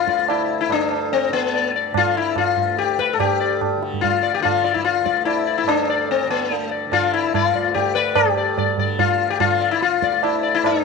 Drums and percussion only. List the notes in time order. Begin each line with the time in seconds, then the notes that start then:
0.08 tabla ke
0.19 tabla te
0.28 tabla na
0.70 tabla na
0.91 tabla na
1.12 tabla tin
1.33 tabla na
1.54 tabla tin
1.94 tabla na, tabla ge
2.36 tabla na, tabla ge
2.57 tabla ge
2.77 tabla te
2.88 tabla te
2.99 tabla ke
3.10 tabla te
3.20 tabla na, tabla ge
3.61 tabla na, tabla ge
3.83 tabla te
3.93 tabla ge
4.04 tabla tin, tabla ge
4.45 tabla na, tabla ge
4.65 tabla te
4.76 tabla ge
4.85 tabla te
4.96 tabla te
5.06 tabla ke
5.17 tabla te
5.27 tabla na
5.68 tabla na
5.88 tabla na
6.09 tabla tin
6.30 tabla na
6.51 tabla tin
6.92 tabla na, tabla ge
7.34 tabla na, tabla ge
7.55 tabla ge
7.75 tabla tin, tabla ge
8.15 tabla na, tabla ge
8.58 tabla na, tabla ge
8.78 tabla ge
8.99 tabla tin, tabla ge
9.40 tabla na, tabla ge
9.61 tabla te
9.82 tabla te
9.92 tabla te
10.02 tabla ke
10.12 tabla te
10.23 tabla na
10.64 tabla na